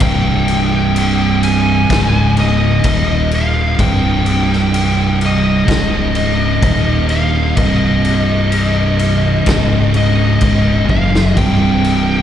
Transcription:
0.00 fingered electric bass C1, distorted electric guitar C2 G2 C3, lead electric guitar G5, kick, crash
0.48 crash
0.96 crash
1.43 lead electric guitar G#5, crash
1.90 fingered electric bass C#1, distorted electric guitar C#2 G#2 C#3, kick, snare, crash
2.37 lead electric guitar D#5, crash
2.84 fingered electric bass D#1, distorted electric guitar D#2 A#2 D#3, kick, crash
3.31 lead electric guitar F5, crash
3.79 fingered electric bass C1, distorted electric guitar C2 G2 C3, lead electric guitar G5, kick, crash
4.26 crash
4.53 snare
4.74 crash
5.21 crash
5.26 lead electric guitar D#5
5.67 fingered electric bass C#1, distorted electric guitar C#2 G#2 C#3, kick, crash
5.71 snare
6.15 lead electric guitar D#5, crash
6.62 fingered electric bass D#1, distorted electric guitar D#2 A#2 D#3, kick, crash
7.09 lead electric guitar F5, crash
7.57 fingered electric bass C1, distorted electric guitar C2 G2 C3, lead electric guitar D#5, kick, crash
8.05 crash
8.52 crash
8.99 crash
9.46 fingered electric bass C#1, distorted electric guitar C#2 G#2 C#3, kick, snare, crash
9.94 lead electric guitar D#5, crash
10.41 fingered electric bass C#1, distorted electric guitar C#2 G#2 C#3, kick, crash
10.89 fingered electric bass F#1, distorted electric guitar F#2 C#3 F#3, lead electric guitar F5, kick
11.15 snare
11.37 fingered electric bass C1, distorted electric guitar C2 G2 C3, lead electric guitar G5, kick, crash
11.85 crash

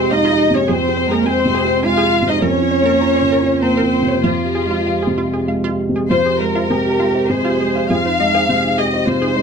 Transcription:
Already playing: felt piano F2 C3 G#3 G4, cello C4, violin section C5
0.11 felt piano G#3, cello D#4, violin section D#5, synth pluck F5
0.25 synth pluck F4
0.31 felt piano G4
0.51 felt piano C3, cello C#4, synth pluck G#4
0.56 violin section C#5
0.68 felt piano F2, cello C4, synth pluck G#4, violin section C5
0.88 felt piano G#4
0.97 synth pluck C5
1.07 felt piano G#3
1.11 cello A#3, synth pluck G#4, violin section A#4
1.25 cello C4, felt piano G#4, violin section C5, synth pluck G#5
1.40 synth pluck C5
1.45 felt piano C3
1.54 synth pluck G#4
1.64 felt piano G#4
1.69 synth pluck C5
1.83 felt piano G#3, cello F4, violin section F5, synth pluck G#5
1.97 synth pluck G#4
2.03 felt piano G#4
2.22 felt piano C3
2.27 cello D#4, synth pluck C5, violin section D#5
2.42 felt piano F2, cello C#4, synth pluck A#4, violin section C#5
2.62 felt piano F4
2.71 synth pluck C#5
2.82 felt piano A#3, synth pluck A#4
3.01 felt piano F4, synth pluck A#5
3.16 synth pluck C#5
3.22 felt piano C#3
3.32 synth pluck A#4
3.42 felt piano F4
3.46 synth pluck C#5
3.62 felt piano A#3, cello C4, violin section C5, synth pluck A#5
3.77 synth pluck A#4
3.82 felt piano F4
4.02 felt piano C3
4.08 synth pluck C#5
4.24 felt piano F2, cello F3, synth pluck F4, violin section F4
4.44 felt piano G4
4.55 synth pluck G#4
4.66 felt piano G#3
4.71 synth pluck F4
4.87 felt piano G4, synth pluck F5
5.02 synth pluck G#4
5.07 felt piano C3
5.18 synth pluck F4
5.27 felt piano G4
5.33 synth pluck G#4
5.47 felt piano G#3, synth pluck F5
5.64 synth pluck F4
5.69 felt piano G4
5.89 felt piano C3
5.96 synth pluck G#4
6.10 felt piano F2, cello F4, synth pluck F4, violin section C5
6.25 felt piano G4, synth pluck G#4
6.40 felt piano G#3, violin section A#4, synth pluck C5
6.55 synth pluck F4, felt piano C5
6.70 felt piano C3, cello G4, synth pluck G#4
6.86 felt piano G4
7.00 felt piano G#3, synth pluck F4
7.15 felt piano C5
7.29 felt piano C3, cello G#4, violin section C5
7.45 synth pluck F4, felt piano G4
7.60 felt piano G#3, synth pluck G#4
7.75 felt piano C5, synth pluck F5
7.90 felt piano F2, cello F4, synth pluck G#4, violin section F5
8.06 felt piano D#4, synth pluck C5
8.20 felt piano G#3, cello D#4, synth pluck D#5
8.34 synth pluck G#4, felt piano C5
8.49 felt piano C3, cello G#4, synth pluck C5
8.64 felt piano D#4
8.78 felt piano G#3, cello G4, synth pluck G#4, violin section D#5
8.93 felt piano C5
9.06 felt piano C3, cello F4, violin section C5
9.22 felt piano D#4, synth pluck G#4
9.35 felt piano G#3, cello D#4, synth pluck C5

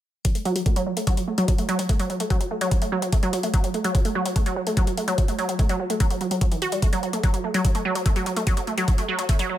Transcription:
0.25 synth arpeggio sound F#3, kick, closed hi-hat
0.35 synth arpeggio sound A3, closed hi-hat
0.45 synth arpeggio sound F#3, closed hi-hat
0.56 synth arpeggio sound F#3, closed hi-hat
0.66 synth arpeggio sound A3, kick, closed hi-hat
0.76 synth arpeggio sound F#3, closed hi-hat
0.86 synth arpeggio sound F#3
0.97 synth arpeggio sound A3, closed hi-hat
1.07 synth arpeggio sound F#3, kick, closed hi-hat
1.17 synth arpeggio sound F#3, closed hi-hat
1.28 synth arpeggio sound A3
1.38 synth arpeggio sound F#3, closed hi-hat
1.48 synth arpeggio sound F#3, kick, closed hi-hat
1.58 synth arpeggio sound A3, closed hi-hat
1.69 synth arpeggio sound F#3, closed hi-hat
1.79 synth arpeggio sound F#3, closed hi-hat
1.89 synth arpeggio sound A3, kick, closed hi-hat
2.00 synth arpeggio sound F#3, closed hi-hat
2.10 synth arpeggio sound F#3, closed hi-hat
2.20 synth arpeggio sound A3, closed hi-hat
2.30 synth arpeggio sound F#3, kick, closed hi-hat
2.41 synth arpeggio sound F#3, closed hi-hat
2.51 synth arpeggio sound A3
2.61 synth arpeggio sound F#3, closed hi-hat
2.71 synth arpeggio sound F#3, kick, closed hi-hat
2.82 synth arpeggio sound A3, closed hi-hat
2.92 synth arpeggio sound F#3
3.02 synth arpeggio sound F#3, closed hi-hat
3.12 synth arpeggio sound A3, kick, closed hi-hat
3.23 synth arpeggio sound F#3, closed hi-hat
3.33 synth arpeggio sound F#3, closed hi-hat
3.43 synth arpeggio sound A3, closed hi-hat
3.54 synth arpeggio sound F#3, kick, closed hi-hat
3.64 synth arpeggio sound F#3, closed hi-hat
3.74 synth arpeggio sound A3, closed hi-hat
3.84 synth arpeggio sound F#3, closed hi-hat
3.95 synth arpeggio sound F#3, kick, closed hi-hat
4.05 synth arpeggio sound A3, closed hi-hat
4.15 synth arpeggio sound F#3
4.26 synth arpeggio sound F#3, closed hi-hat
4.36 synth arpeggio sound A3, kick, closed hi-hat
4.46 synth arpeggio sound F#3, closed hi-hat
4.56 synth arpeggio sound F#3
4.67 synth arpeggio sound A3, closed hi-hat
4.77 synth arpeggio sound F#3, kick, closed hi-hat
4.87 synth arpeggio sound F#3, closed hi-hat
4.97 synth arpeggio sound A3, closed hi-hat
5.08 synth arpeggio sound F#3, closed hi-hat
5.18 synth arpeggio sound F#3, kick, closed hi-hat
5.28 synth arpeggio sound A3, closed hi-hat
5.39 synth arpeggio sound F#3, closed hi-hat
5.49 synth arpeggio sound F#3, closed hi-hat
5.59 synth arpeggio sound A3, kick, closed hi-hat
5.69 synth arpeggio sound F#3, closed hi-hat
5.80 synth arpeggio sound F#3
5.90 synth arpeggio sound A3, closed hi-hat
6.00 synth arpeggio sound F#3, kick, closed hi-hat
6.10 synth arpeggio sound F#3, closed hi-hat
6.21 synth arpeggio sound F#3, closed hi-hat
6.31 synth arpeggio sound F#3, closed hi-hat
6.41 synth arpeggio sound F#3, kick, closed hi-hat
6.52 synth arpeggio sound E3, closed hi-hat
6.62 synth arpeggio sound F#4, closed hi-hat
6.72 synth arpeggio sound G3, closed hi-hat
6.82 synth arpeggio sound A3, kick, closed hi-hat
6.93 synth arpeggio sound F#3, closed hi-hat
7.03 synth arpeggio sound F#3, closed hi-hat
7.13 synth arpeggio sound A3, closed hi-hat
7.23 synth arpeggio sound F#3, kick, closed hi-hat
7.34 synth arpeggio sound F#3, closed hi-hat
7.44 synth arpeggio sound A3
7.54 synth arpeggio sound F#3, closed hi-hat
7.65 synth arpeggio sound F#3, kick, closed hi-hat
7.75 synth arpeggio sound A3, closed hi-hat
7.85 synth arpeggio sound F#3
7.95 synth arpeggio sound F#3, closed hi-hat
8.06 synth arpeggio sound A3, kick, closed hi-hat
8.16 synth arpeggio sound F#3, closed hi-hat
8.26 synth arpeggio sound F#3, closed hi-hat
8.37 synth arpeggio sound A3, closed hi-hat
8.47 synth arpeggio sound F#3, kick, closed hi-hat
8.57 synth arpeggio sound F#3, closed hi-hat
8.67 synth arpeggio sound A3, closed hi-hat
8.78 synth arpeggio sound F#3, closed hi-hat
8.88 synth arpeggio sound F#3, kick, closed hi-hat
8.98 synth arpeggio sound A3, closed hi-hat
9.08 synth arpeggio sound F#3
9.19 synth arpeggio sound F#3, closed hi-hat
9.29 synth arpeggio sound A3, kick, closed hi-hat
9.39 synth arpeggio sound F#3, closed hi-hat
9.50 synth arpeggio sound F#3

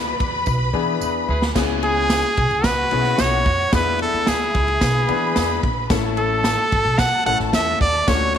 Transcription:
Already playing: upright bass D2, grand piano G#4, string section B4 B5
0.20 upright bass E2, kick, ride
0.46 upright bass B1, kick, tambourine
0.73 upright bass E3, grand piano B3 D4 E4 G#4
1.01 upright bass E2, horn section E4 G#4 B4, tambourine
1.28 upright bass D2, horn section E4 G#4 B4
1.42 snare
1.55 upright bass C#2, grand piano B3 C#4 E4 G#4, string section G#4 G#5, kick, snare, crash, tambourine
1.83 trumpet G#4, ride
2.10 snare, ride, tambourine
2.37 upright bass B1, kick, ride
2.51 upright bass C#2, ride
2.64 string section F#4 F#5, trumpet B4, kick, snare, ride, tambourine
2.91 upright bass B1, grand piano B3 C#4 E4 G#4, ride
3.04 snare
3.18 upright bass B1, trumpet C#5, snare, ride, tambourine
3.46 upright bass F2, kick, ride
3.72 upright bass E2, grand piano B3 D4 E4 G#4, string section E4 E5, trumpet B4, kick, snare, ride, tambourine
3.99 trumpet A4, ride
4.14 upright bass D2
4.27 upright bass D2, trumpet G#4, snare, ride, tambourine
4.54 upright bass C#2, kick, ride
4.68 ride
4.81 upright bass B1, string section B4 B5, kick, snare, ride, tambourine
5.08 upright bass E3, grand piano B3 D4 E4 G#4, ride
5.36 upright bass E2, snare, ride, tambourine
5.63 upright bass A#1, kick, ride
5.90 upright bass A1, grand piano A3 C#4 E4 A4, string section A4 A5, kick, snare, ride, tambourine
6.17 trumpet A4, ride
6.44 snare, ride, tambourine
6.72 upright bass G#1, kick, ride
6.85 upright bass B1
6.98 trumpet F#5, kick, snare, ride, tambourine
7.26 upright bass A1, grand piano A3 C#4 E4 A4, trumpet F#5, ride
7.39 upright bass A1, snare
7.53 upright bass E2, trumpet E5, snare, ride, tambourine
7.81 upright bass D#2, trumpet D5, kick, ride
8.07 upright bass D2, grand piano A3 C#4 D4 F4, string section C#5 C#6, trumpet C#5, kick, snare, ride, tambourine
8.15 grand piano F#4
8.34 ride

